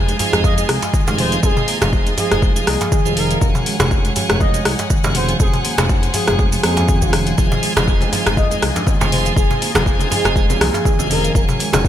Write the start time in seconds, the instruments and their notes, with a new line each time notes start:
Already playing: analog synth bass F1, tonewheel organ F3 G#3 C4 D#4 G#4, string section F4 D#5 G#5
0.08 marimba G#3, closed hi-hat, shaker
0.19 tonewheel organ F3 G#3 C4 D#4 G#4, marimba F3, open hi-hat, djembe tone, shaker
0.33 analog synth bass F1, marimba G#3, cross-stick, closed hi-hat, djembe tone, shaker
0.44 marimba F3, analog synth lead D#5, kick, djembe tone, shaker
0.58 tonewheel organ F3 G#3 C4 D#4 G#4, marimba G#3, closed hi-hat, shaker
0.69 analog synth bass C2, cross-stick, open hi-hat, shaker
0.82 closed hi-hat, djembe slap, shaker
0.94 marimba D#3, kick, shaker
1.07 analog synth bass F1, tonewheel organ F3 G#3 C4 D#4 G#4, marimba G#3, djembe slap, shaker
1.18 marimba F3, analog synth lead C5, open hi-hat, mid tom, shaker
1.32 marimba F3, closed hi-hat, shaker
1.43 analog synth bass F1, tonewheel organ F3 G#3 C4 D#4 G#4, analog synth lead G#4, kick, shaker
1.57 mid tom, djembe slap, shaker
1.68 marimba A#3, open hi-hat, shaker
1.81 analog synth bass F1, tonewheel organ F3 G#3 C4 D#4 G#4, marimba F3, cross-stick, closed hi-hat, mid tom, djembe slap, djembe tone, shaker
1.93 kick, shaker
2.07 closed hi-hat, shaker
2.17 tonewheel organ F3 G#3 C4 D#4 G#4, marimba F3, analog synth lead G#4, open hi-hat, djembe tone, shaker
2.31 analog synth bass F1, cross-stick, closed hi-hat, djembe tone, shaker
2.42 marimba G#3, kick, shaker
2.56 tonewheel organ F3 G#3 C4 D#4 G#4, marimba F3, closed hi-hat, shaker
2.67 analog synth bass C2, marimba A#3, analog synth lead G#4, cross-stick, open hi-hat, shaker
2.81 marimba F3, closed hi-hat, djembe slap, djembe tone, shaker
2.92 marimba D#3, kick, shaker
3.05 analog synth bass F1, tonewheel organ F3 G#3 C4 D#4 G#4, marimba F3, shaker
3.17 marimba D#3, analog synth lead A#4, open hi-hat, shaker
3.31 marimba F3, closed hi-hat, shaker
3.41 analog synth bass F1, marimba F3, tonewheel organ G#3 C#4 F#4, string section C#5 F#5 G#5, kick, shaker
3.55 mid tom, djembe slap, shaker
3.66 marimba G#3, open hi-hat, shaker
3.80 analog synth bass F1, tonewheel organ G#3 C#4 F#4, cross-stick, closed hi-hat, mid tom, djembe slap, djembe tone, shaker
3.91 kick, shaker
4.05 marimba G#3, closed hi-hat, shaker
4.16 marimba F3, tonewheel organ G#3 C#4 F#4, open hi-hat, djembe tone, shaker
4.29 analog synth bass F1, marimba G#3, cross-stick, closed hi-hat, djembe tone, shaker
4.40 marimba F3, analog synth lead D#5, kick, djembe tone, shaker
4.54 marimba G#3, tonewheel organ G#3 C#4 F#4, closed hi-hat, shaker
4.65 analog synth bass C2, cross-stick, open hi-hat, shaker
4.79 closed hi-hat, djembe slap, shaker
4.90 marimba D#3, kick, shaker
5.04 analog synth bass F1, tonewheel organ G#3 C#4 F#4, marimba G#3, djembe slap, shaker
5.15 marimba F3, analog synth lead C5, open hi-hat, mid tom, shaker
5.29 marimba F3, closed hi-hat, shaker
5.40 analog synth bass F1, tonewheel organ G#3 C#4 F#4, analog synth lead G#4, string section C5, kick, shaker
5.53 closed hi-hat, mid tom, djembe slap, shaker
5.65 marimba A#3, open hi-hat, shaker
5.78 analog synth bass F1, marimba F3, tonewheel organ G#3 C#4 F#4, cross-stick, closed hi-hat, mid tom, djembe slap, djembe tone, shaker
5.89 kick, shaker
6.03 closed hi-hat, shaker
6.14 marimba F3, tonewheel organ G#3 C#4 F#4, analog synth lead G#4, open hi-hat, djembe tone, shaker
6.28 analog synth bass F1, analog synth lead G#4, cross-stick, closed hi-hat, djembe tone, shaker
6.39 marimba G#3, kick, shaker
6.52 marimba F3, tonewheel organ G#3 C#4 F#4, open hi-hat, shaker
6.63 analog synth bass F2, tonewheel organ G#3 C#4 F#4, marimba A#3, analog synth lead G#4, cross-stick, open hi-hat, shaker
6.77 marimba F3, closed hi-hat, djembe slap, djembe tone, shaker
6.88 marimba D#3, kick, shaker
7.02 analog synth bass F1, marimba F3, tonewheel organ G#3 C#4 F#4, kick, shaker
7.13 marimba D#3, cross-stick, open hi-hat, shaker
7.27 marimba F3, closed hi-hat, shaker
7.38 analog synth bass F1, tonewheel organ F3 G#3 C4 D#4 G#4, marimba F3, string section F4 D#5, kick, shaker
7.52 mid tom, djembe slap, shaker
7.63 marimba G#3, open hi-hat, muted conga, shaker
7.76 analog synth bass F1, tonewheel organ F3 G#3 C4 D#4 G#4, cross-stick, closed hi-hat, mid tom, djembe slap, djembe tone, high conga, low conga, shaker
7.88 kick, shaker
8.01 marimba G#3, closed hi-hat, high conga, shaker
8.12 tonewheel organ F3 G#3 C4 D#4 G#4, marimba F3, open hi-hat, muted conga, djembe tone, shaker
8.26 analog synth bass F1, marimba G#3, cross-stick, closed hi-hat, djembe tone, shaker
8.37 marimba F3, analog synth lead D#5, kick, high conga, djembe tone, shaker
8.51 tonewheel organ F3 G#3 C4 D#4 G#4, marimba G#3, closed hi-hat, muted conga, shaker
8.62 analog synth bass C2, cross-stick, open hi-hat, high conga, shaker
8.76 closed hi-hat, djembe slap, low conga, shaker
8.87 marimba D#3, kick, muted conga, high conga, shaker
9.01 analog synth bass F1, tonewheel organ F3 G#3 C4 D#4 G#4, marimba G#3, djembe slap, high conga, shaker
9.12 marimba F3, analog synth lead C5, open hi-hat, mid tom, shaker
9.25 marimba F3, closed hi-hat, muted conga, shaker
9.36 analog synth bass F1, tonewheel organ F3 G#3 C4 D#4 G#4, analog synth lead G#4, kick, shaker
9.51 mid tom, djembe slap, shaker
9.62 marimba A#3, open hi-hat, muted conga, shaker
9.75 analog synth bass F1, tonewheel organ F3 G#3 C4 D#4 G#4, marimba F3, cross-stick, closed hi-hat, mid tom, djembe slap, djembe tone, high conga, low conga, shaker
9.86 kick, shaker
9.99 closed hi-hat, high conga, shaker
10.10 tonewheel organ F3 G#3 C4 D#4 G#4, marimba F3, analog synth lead G#4, open hi-hat, muted conga, djembe tone, shaker
10.25 analog synth bass F1, cross-stick, closed hi-hat, djembe tone, shaker
10.36 marimba G#3, kick, shaker
10.50 tonewheel organ F3 G#3 C4 D#4 G#4, marimba F3, closed hi-hat, muted conga, high conga, shaker
10.60 analog synth bass C2, marimba A#3, analog synth lead G#4, cross-stick, open hi-hat, low conga, shaker
10.74 marimba F3, closed hi-hat, djembe slap, djembe tone, shaker
10.85 marimba D#3, kick, muted conga, low conga, shaker
10.99 analog synth bass F1, tonewheel organ F3 G#3 C4 D#4 G#4, marimba F3, low conga, shaker
11.10 marimba D#3, analog synth lead A#4, open hi-hat, high conga, shaker
11.24 marimba F3, closed hi-hat, muted conga, shaker
11.35 analog synth bass F1, marimba F3, tonewheel organ G#3 C#4 F#4, string section C#5, kick, shaker
11.49 mid tom, djembe slap, shaker
11.60 marimba G#3, open hi-hat, muted conga, shaker
11.73 analog synth bass F1, tonewheel organ G#3 C#4 F#4, cross-stick, closed hi-hat, mid tom, djembe slap, djembe tone, high conga, low conga, shaker
11.85 kick, shaker